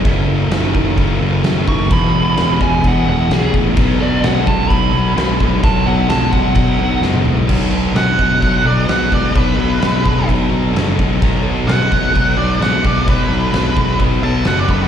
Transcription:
<<
  \new Staff \with { instrumentName = "Lead electric guitar" } { \time 4/4 \key fis \dorian \tempo 4 = 129 r2. r8 cis'''8 | b''4. gis''8 fis''8 fis''8 gis'8 r8 | r8 d''8 fis''8 a''8 b''2 | a''8 fis''8 a''8 fis''8 fis''4 r4 |
r1 | r1 | r1 | r1 | }
  \new Staff \with { instrumentName = "Lead electric guitar" } { \time 4/4 \key fis \dorian r1 | r1 | r1 | r1 |
r4 fis''4. d''8 fis''8 d''8 | b'2 r2 | r4 fis''4. d''8 fis''8 d''8 | b'2 r8 a''8 fis''16 d''16 b'16 fis'16 | }
  \new Staff \with { instrumentName = "Tonewheel organ" } { \time 4/4 \key fis \dorian << { <ais e' a'>1 | <d' g' gis'>1 | <d' dis' a'>1~ | <d' dis' a'>1 |
<d' dis' a'>1~ | <d' dis' a'>1 | \tuplet 3/2 { <e' ais' dis''>8 <dis' a' d''>4~ } <dis' a' d''>2.~ | <dis' a' d''>1 | } \\ { r1 | r1 | r1 | r1 |
<a b c' d' e' eis' g' a' b' c'' d''>8 r2. r8 | r1 | r1 | r1 | } >> }
  \new Staff \with { instrumentName = "Distorted electric guitar" } { \clef bass \time 4/4 \key fis \dorian <fis, cis>8 <fis, cis>8 <fis, dis>8 <fis, dis>8 <fis, cis>8 <fis, cis>8 <fis, dis>8 <fis, dis>8 | <e, b,>8 <e, b,>8 <e, cis>8 <e, cis>8 <e, b,>8 <e, b,>8 <e, cis>8 <e, cis>8 | <b, fis>8 <b, fis>8 <b, gis>8 <b, gis>8 <b, fis>8 <b, fis>8 <b, gis>8 <b, gis>8 | <b, fis>8 <b, fis>8 <b, gis>8 <b, gis>8 <b, fis>8 <b, fis>8 <b, gis>8 <b, gis>8 |
<b, fis>8 <b, fis>8 <b, gis>8 <b, gis>8 <b, fis>8 <b, fis>8 <b, gis>8 <b, gis>8 | <b, fis>8 <b, fis>8 <b, gis>8 <b, gis>8 <b, fis>8 <b, fis>8 <b, gis>8 <b, gis>8 | <b, fis>8 <b, fis>8 <b, gis>8 <b, gis>8 <b, fis>8 <b, fis>8 <b, gis>8 <b, gis>8 | <b, fis>8 <b, fis>8 <b, gis>8 <b, gis>8 <b, fis>8 <b, fis>8 <b, gis>8 <b, gis>8 | }
  \new Staff \with { instrumentName = "Picked electric bass" } { \clef bass \time 4/4 \key fis \dorian fis,,4 fis,,8 fis,,8 fis,,8 fis,,8 fis,,8 fis,,8 | e,,8 e,,8 e,,8 e,,8 e,,8 e,,8 b,,8 a,,8 | b,,4 b,,8 b,,8 b,,8 b,,8 b,,8 b,,8 | b,,8 b,,8 b,,8 b,,8 b,,8 b,,8 fis,,8 b,,8 |
b,,4 b,,8 b,,8 b,,8 b,,8 b,,8 b,,8 | b,,8 b,,8 b,,8 b,,8 b,,8 b,,8 fis,,8 b,,8 | b,,4 b,,8 b,,8 b,,8 b,,8 b,,8 b,,8 | b,,8 b,,8 b,,8 b,,8 b,,8 b,,8 fis,,8 fis,8 | }
  \new DrumStaff \with { instrumentName = "Drums" } \drummode { \time 4/4 <cymc bd>4 <cymc sn>8 bd8 <cymc bd>4 <cymc sn>8 bd8 | <cymc bd>4 <cymc sn>8 bd8 <cymc bd>4 <cymc sn>8 bd8 | <cymc bd>4 <cymc sn>8 bd8 <cymc bd>4 <cymc sn>8 bd8 | <cymc bd>4 <cymc sn>8 bd8 <cymc bd>4 sn16 tommh16 toml16 tomfh16 |
<cymc bd>4 <cymc sn>8 bd8 <cymc bd>4 <cymc sn>8 bd8 | <cymc bd>4 <cymc sn>8 bd8 <cymc bd>4 <cymc sn>8 bd8 | <cymc bd>4 <cymc sn>8 bd8 <cymc bd>4 <cymc sn>8 bd8 | <cymc bd>4 <cymc sn>8 bd8 <cymc bd>4 <cymc sn>8 bd8 | }
>>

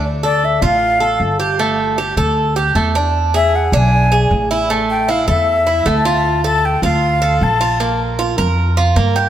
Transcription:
<<
  \new Staff \with { instrumentName = "Flute" } { \time 4/4 \key g \dorian \tempo 4 = 155 r8 d''8 e''8 f''4. r4 | r1 | r8 e''8 fis''8 gis''4. r4 | r8 g''8 f''8 e''4. a''4~ |
a''8 a''8 g''8 f''4. a''4~ | a''8 r2. r8 | }
  \new Staff \with { instrumentName = "Cuban tres" } { \time 4/4 \key g \dorian r8 a'4 f'4 a'4 g'8 | a4 g'8 a'4 g'8 a8 d'8~ | d'8 gis'4 d'4 gis'4 e'8 | a4 e'8 a'4 e'8 a8 f'8~ |
f'8 a'4 f'4 a'4 f'8 | bes4 f'8 bes'4 f'8 bes8 g'8 | }
  \new Staff \with { instrumentName = "Upright bass" } { \clef bass \time 4/4 \key g \dorian d,4. a,,4. g,,4~ | g,,4. d,4. e,4~ | e,4. b,,4. a,,4~ | a,,4. e,4. d,4~ |
d,4. d,4. bes,,4~ | bes,,4. f,4. g,4 | }
>>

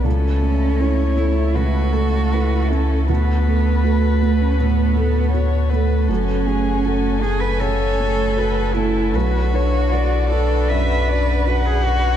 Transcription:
<<
  \new Staff \with { instrumentName = "Violin" } { \time 4/4 \key fis \minor \tempo 4 = 79 a'4 cis''4 b'8 a'8 b'8 a'8 | b'2. cis''8 b'8 | a'8 gis'8 a'4 cis''4 b'8 a'8 | b'8 cis''8 d''4 e''8 d''8 fis''4 | }
  \new Staff \with { instrumentName = "Felt piano" } { \time 4/4 \key fis \minor cis,8 <a a'>8 <e' a'>8 <a a'>8 cis,8 <a a'>8 <e' a'>8 <a a'>8 | d,8 <a a'>8 <fis' a'>8 <a a'>8 a,8 <a a'>8 <fis' a'>8 <a a'>8 | fis,8 <a gis'>8 <fis' a'>8 <a a'>8 cis8 <a a'>8 <fis' a'>8 <a a'>8 | b,,8 <d' b'>8 <fis' b'>8 <d' b'>8 fis,8 <d' b'>8 <fis' b'>8 <d' b'>8 | }
  \new Staff \with { instrumentName = "String section" } { \time 4/4 \key fis \minor << { <a a'>1~ | <a a'>1 | <a gis''>1 | <d' b'>1 | } \\ { e'1 | fis'1~ | fis'1 | fis'1 | } >> }
  \new Staff \with { instrumentName = "Cello" } { \time 4/4 \key fis \minor cis'4. e'8 fis'4. cis'8 | b4 a8. cis'16 b4. r8 | cis'4. gis'16 b'16 a'4. e'8 | fis'4. a'8 b'4~ b'16 gis'16 fis'8 | }
  \new Staff \with { instrumentName = "Sub bass" } { \clef bass \time 4/4 \key fis \minor cis,1 | d,1 | fis,,1 | b,,1 | }
>>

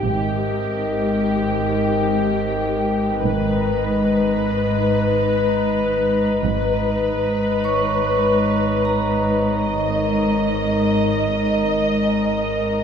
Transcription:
<<
  \new Staff \with { instrumentName = "Vibraphone" } { \time 4/4 \key gis \minor \tempo 4 = 75 r1 | r1 | r4. <cis'' cis'''>4. ais''4~ | ais''2 r4 gis''4 | }
  \new Staff \with { instrumentName = "Glass harmonica" } { \time 4/4 \key gis \minor << { <ais' g''>1 | <b' ais''>1 | <b' ais''>1 | <ais' ais''>1 | } \\ { dis''1 | dis''1 | dis''1~ | dis''1 | } >> }
  \new Staff \with { instrumentName = "Violin section" } { \time 4/4 \key gis \minor g'1 | b'1 | b'1 | dis''1 | }
  \new Staff \with { instrumentName = "Cello section" } { \clef bass \time 4/4 \key gis \minor gis,1 | gis,1 | gis,1~ | gis,1 | }
  \new Staff \with { instrumentName = "Double bass section" } { \clef bass \time 4/4 \key gis \minor gis,,4 r2. | gis,,4 r2. | gis,,4 r2. | r1 | }
  \new Staff \with { instrumentName = "Synth drone" } { \clef bass \time 4/4 \key gis \minor gis,,1 | gis,,1 | gis,,1~ | gis,,1 | }
>>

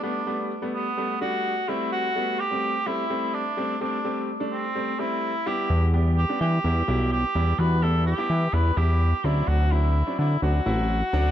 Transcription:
<<
  \new Staff \with { instrumentName = "Cor anglais" } { \time 4/4 \key a \dorian \tempo 4 = 127 d'4 r8 b4 fis'4 e'8 | fis'4 g'4 e'4 d'4 | d'4 r8 c'4 e'4 g'8~ | g'8 r8 g'8 g'4. g'4 |
b'8 a'8 g'4 b'8 g'4 e'8 | fis'8 e'4 e'8 fis'2 | }
  \new Staff \with { instrumentName = "Grand piano" } { \time 4/4 \key a \dorian <g a b>16 r16 <g a b>8 r16 <g a b>8 r16 <g a b>16 r16 <g a d'>8. r16 <g a c'>8~ | <g a c'>16 r16 <g a b>8 r16 <g a c'>8 r16 <g a c'>16 r16 <g a c'>8. r16 <g a c'>16 r16 | <g a c'>16 r16 <g a c'>8 r16 <g a d'>8 r16 <g a c'>16 r16 <g a c'>8. r16 <g b e'>8~ | <g b e'>16 r16 <g b g'>8 r16 <g b d'>8 r16 <g b e'>16 r16 <g b e'>8. r16 <g b e'>16 r16 |
<g b fis'>16 r16 <g b e'>8 r16 <g b e'>8 r16 <g b e'>16 r16 <g b e'>8. r16 <fis c' d'>8~ | <fis c' d'>16 r16 <fis c' e'>8 r16 <fis c' d'>8 r16 <fis c' d'>16 r16 <fis c' e'>8. r16 <fis c' d'>16 r16 | }
  \new Staff \with { instrumentName = "Analog synth bass" } { \clef bass \time 4/4 \key a \dorian r1 | r1 | r1 | e,4. e8 e,8 b,,4 e,8 |
e,4. e8 e,8 e,4 d,8 | d,4. d8 d,8 a,,4 d,8 | }
>>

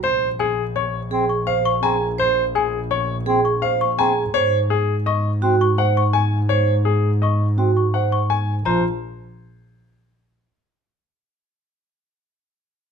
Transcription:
<<
  \new Staff \with { instrumentName = "Celesta" } { \time 6/4 \key bes \minor \tempo 4 = 167 r4 aes''8 r8 des'''8 r4 des'''8 r8 des'''8 bes''8 r8 | r4 aes''8 r8 des'''8 r4 des'''8 r8 des'''8 bes''8 r8 | r2 des'''8 r4 des'''8 r8 des'''8 aes''8 r8 | r2 des'''8 r4 des'''8 r8 des'''8 aes''8 r8 |
bes''8 r1 r4. | r1. | }
  \new Staff \with { instrumentName = "Grand piano" } { \time 6/4 \key bes \minor c''8 r8 aes'8 r8 des''8 r4. f''8 r8 aes''8 r8 | c''8 r8 aes'8 r8 des''8 r4. f''8 r8 aes''8 r8 | des''8 r8 aes'8 r8 ees''8 r4. ges''8 r8 aes''8 r8 | des''8 r8 aes'8 r8 ees''8 r4. ges''8 r8 aes''8 r8 |
c''8 r1 r4. | r1. | }
  \new Staff \with { instrumentName = "Vibraphone" } { \time 6/4 \key bes \minor c''8 r2 r8 aes'8 r8 c''8 r8 aes'8 r8 | c''8 r2 r8 aes'8 r8 c''8 r8 aes'8 r8 | c''8 r2 r8 ges'8 r8 c''8 r4. | c''8 r2 r8 ges'8 r8 c''8 r4. |
f'8 r1 r4. | r1. | }
  \new Staff \with { instrumentName = "Bass clarinet" } { \time 6/4 \key bes \minor r2. c'8 r4. c'8 r8 | r2. c'8 r4. c'8 r8 | r2. c'8 r2 r8 | r2. c'8 r2 r8 |
f8 r1 r4. | r1. | }
  \new Staff \with { instrumentName = "Double bass section" } { \clef bass \time 6/4 \key bes \minor bes,,1.~ | bes,,1. | aes,1.~ | aes,1. |
bes,,8 r1 r4. | r1. | }
>>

